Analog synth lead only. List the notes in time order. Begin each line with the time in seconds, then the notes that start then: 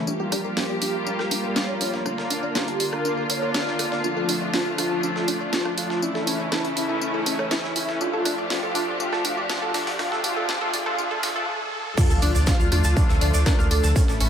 0.07 G4
0.57 G4
0.82 G4
1.19 A#4
1.56 C#5
1.81 C#5
2.55 G4
2.93 A#4
3.30 C#5
3.54 D5
4.04 F4
4.54 F4
4.78 F4
5.03 F4
5.53 F4
5.78 F4
6.02 E4
6.52 E4
6.77 E4
7.01 E4
7.51 E4
7.76 E4
8.01 F4
8.50 F4
9.00 F4
9.50 F4
9.99 F4
10.24 F4
10.49 F4
10.74 F4
10.98 F4
11.23 F4
11.98 F4
12.47 F4
12.72 F4
13.09 A4
13.46 A#4
13.71 A4